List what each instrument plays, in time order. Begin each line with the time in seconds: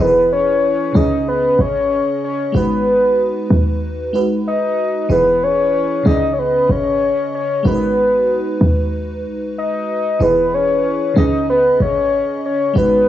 0.00 808-style bass E1, fm electric piano E3 E4 G#4 A#4, soft synth lead B4
0.07 fm electric piano B4
0.33 soft synth lead C#5
0.93 808-style bass C#2, fm electric piano C#3 C#4 G#4, soft synth lead D#5
0.98 fm electric piano C#5
1.04 fm electric piano D#5
1.28 soft synth lead B4
1.59 808-style bass G#1, soft synth lead C#5
2.24 soft synth lead C#5
2.52 808-style bass G#1, fm electric piano G#3 D#4 F#4, soft synth lead B4
2.57 fm electric piano B4
3.50 808-style bass D#2
4.13 808-style bass B1, fm electric piano G#3 D#4 F#4 B4
4.48 soft synth lead D#5
5.09 808-style bass E1, fm electric piano E3 E4 G#4 B4, soft synth lead B4
5.43 soft synth lead C#5
6.03 808-style bass C#2, fm electric piano C#3 C#4 G#4, soft synth lead D#5
6.08 fm electric piano D5
6.15 fm electric piano D#5
6.33 soft synth lead C#5
6.39 soft synth lead B4
6.69 808-style bass G#1, soft synth lead C#5
7.35 soft synth lead C#5
7.63 808-style bass G#1, fm electric piano G#3 D#4 F#4, soft synth lead B4
7.68 fm electric piano A#4
7.74 fm electric piano B4
8.61 808-style bass D#2
9.25 808-style bass B1
9.58 soft synth lead D#5
10.19 808-style bass E1, fm electric piano E3 E4 G#4 B4, soft synth lead B4
10.54 soft synth lead C#5
11.14 808-style bass C#2, fm electric piano C#3 C#4 G#4, soft synth lead D#5
11.19 fm electric piano D#5
11.50 soft synth lead B4
11.80 808-style bass G#1, soft synth lead C#5
12.46 soft synth lead C#5
12.74 808-style bass G#1, fm electric piano G#3 D#4 F#4
12.78 soft synth lead B4, fm electric piano B4